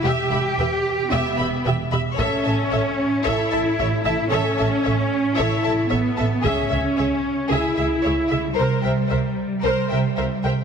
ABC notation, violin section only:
X:1
M:4/4
L:1/8
Q:1/4=113
K:Alyd
V:1 name="Violin section"
[=Ge] [eb] [B=g] z [Ge] [eb] [Bg] [eb] | [Ac] [ea] [ce] z [Ac] [ea] [ce] [ea] | [Ac] [ea] [ce] z [Ac] [ea] [ce] [ea] | G e c z G e c e |
[_B=c] [e=g] [ce] z [Bc] [eg] [ce] [eg] |]